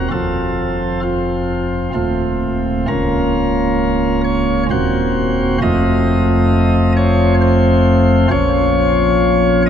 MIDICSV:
0, 0, Header, 1, 2, 480
1, 0, Start_track
1, 0, Tempo, 923077
1, 58, Time_signature, 3, 2, 24, 8
1, 1979, Tempo, 900901
1, 5117, End_track
2, 0, Start_track
2, 0, Title_t, "Pipe organ"
2, 0, Program_c, 0, 19
2, 58, Note_on_c, 0, 60, 43
2, 58, Note_on_c, 0, 69, 72
2, 60, Note_on_c, 0, 29, 53
2, 60, Note_on_c, 0, 41, 57
2, 61, Note_on_c, 0, 65, 44
2, 519, Note_off_c, 0, 69, 0
2, 523, Note_off_c, 0, 65, 0
2, 534, Note_on_c, 0, 65, 80
2, 989, Note_off_c, 0, 29, 0
2, 989, Note_off_c, 0, 41, 0
2, 989, Note_off_c, 0, 60, 0
2, 1000, Note_off_c, 0, 65, 0
2, 1008, Note_on_c, 0, 27, 58
2, 1009, Note_on_c, 0, 57, 44
2, 1009, Note_on_c, 0, 60, 44
2, 1011, Note_on_c, 0, 65, 48
2, 1012, Note_on_c, 0, 39, 60
2, 1486, Note_off_c, 0, 27, 0
2, 1486, Note_off_c, 0, 57, 0
2, 1486, Note_off_c, 0, 60, 0
2, 1487, Note_off_c, 0, 65, 0
2, 1488, Note_off_c, 0, 39, 0
2, 1497, Note_on_c, 0, 61, 46
2, 1497, Note_on_c, 0, 70, 88
2, 1498, Note_on_c, 0, 58, 50
2, 1498, Note_on_c, 0, 65, 48
2, 1499, Note_on_c, 0, 25, 52
2, 1501, Note_on_c, 0, 37, 57
2, 2195, Note_off_c, 0, 70, 0
2, 2213, Note_on_c, 0, 73, 88
2, 2419, Note_off_c, 0, 73, 0
2, 2435, Note_off_c, 0, 58, 0
2, 2435, Note_off_c, 0, 61, 0
2, 2435, Note_off_c, 0, 65, 0
2, 2436, Note_off_c, 0, 25, 0
2, 2437, Note_off_c, 0, 37, 0
2, 2457, Note_on_c, 0, 60, 49
2, 2459, Note_on_c, 0, 39, 55
2, 2459, Note_on_c, 0, 58, 53
2, 2460, Note_on_c, 0, 27, 59
2, 2460, Note_on_c, 0, 66, 49
2, 2460, Note_on_c, 0, 72, 88
2, 2924, Note_off_c, 0, 60, 0
2, 2925, Note_off_c, 0, 27, 0
2, 2925, Note_off_c, 0, 39, 0
2, 2925, Note_off_c, 0, 58, 0
2, 2925, Note_off_c, 0, 72, 0
2, 2926, Note_off_c, 0, 66, 0
2, 2943, Note_on_c, 0, 60, 53
2, 2944, Note_on_c, 0, 41, 59
2, 2945, Note_on_c, 0, 29, 55
2, 2946, Note_on_c, 0, 57, 49
2, 2946, Note_on_c, 0, 75, 101
2, 2948, Note_on_c, 0, 65, 50
2, 3640, Note_off_c, 0, 75, 0
2, 3663, Note_on_c, 0, 73, 99
2, 3864, Note_off_c, 0, 73, 0
2, 3902, Note_on_c, 0, 72, 105
2, 4359, Note_off_c, 0, 29, 0
2, 4359, Note_off_c, 0, 41, 0
2, 4359, Note_off_c, 0, 60, 0
2, 4360, Note_off_c, 0, 57, 0
2, 4361, Note_off_c, 0, 65, 0
2, 4366, Note_off_c, 0, 72, 0
2, 4377, Note_on_c, 0, 34, 68
2, 4377, Note_on_c, 0, 61, 57
2, 4379, Note_on_c, 0, 46, 66
2, 4379, Note_on_c, 0, 65, 54
2, 4380, Note_on_c, 0, 73, 100
2, 4381, Note_on_c, 0, 53, 54
2, 5079, Note_off_c, 0, 73, 0
2, 5100, Note_on_c, 0, 75, 108
2, 5117, Note_off_c, 0, 34, 0
2, 5117, Note_off_c, 0, 46, 0
2, 5117, Note_off_c, 0, 53, 0
2, 5117, Note_off_c, 0, 61, 0
2, 5117, Note_off_c, 0, 65, 0
2, 5117, Note_off_c, 0, 75, 0
2, 5117, End_track
0, 0, End_of_file